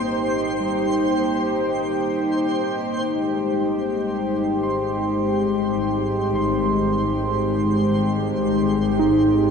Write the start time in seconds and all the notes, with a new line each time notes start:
Already playing: G#1 A#3 D#4 G4 C5 G5 C6
0.60 G3
3.06 G#1 G#3
3.11 C5 C6
3.16 D#5
4.63 C6
6.35 C6
8.99 D#4